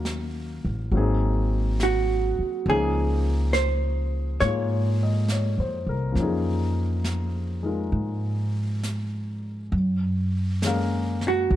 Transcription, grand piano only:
0.00 0.90 F#3 soft
0.00 0.92 A#3 soft
0.00 0.94 C#4 soft
0.00 0.94 D#4 soft
0.00 0.96 F5 soft
0.92 2.66 F#3 soft
0.92 2.67 A#3 soft
0.92 2.68 C4 soft
0.92 2.67 D#4 soft
0.97 2.68 G#4 medium
2.68 6.11 F3 medium
2.68 4.40 A#3 soft
2.68 6.16 C#4 soft
2.68 6.18 D#4 soft
2.68 6.18 G#4 medium
4.42 6.18 G#3 soft
4.42 6.13 A#3 soft
4.42 6.18 F4 soft
5.03 5.47 D#5 soft
5.32 5.87 C#5 soft
5.60 6.05 C5 soft
5.89 6.34 A#4 soft
6.12 9.71 F3 soft
6.12 9.72 A#3 soft
6.18 9.74 C#4 soft
6.18 7.62 D#4 soft
6.22 9.76 G#4 soft
7.63 9.73 G#3 soft
7.63 9.73 D#4 soft
7.63 9.74 F4 soft
7.63 9.74 A#4 soft
10.62 11.56 G#3 soft
10.62 11.56 A#3 soft
10.62 11.56 C#4 soft
10.62 11.56 F5 soft
10.67 11.56 A#4 medium

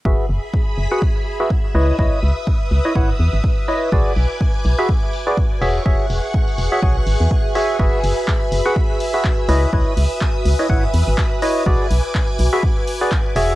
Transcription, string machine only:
0.05 1.73 G#4 medium
0.05 3.88 E5 medium
0.05 1.73 B5 medium
1.75 5.58 B4 medium
1.75 3.90 D#6 medium
3.92 5.60 G#5 medium
3.92 5.60 D6 medium
5.62 9.45 G#4 medium
5.62 7.77 F#5 medium
5.62 7.77 C#6 medium
7.79 11.63 E5 medium
7.79 9.47 B5 medium
9.49 13.32 B4 medium
9.49 11.64 D#6 medium
11.67 13.34 G#5 medium
11.67 13.34 D6 medium
13.36 13.55 G#4 medium
13.36 13.55 F#5 medium
13.36 13.55 C#6 medium

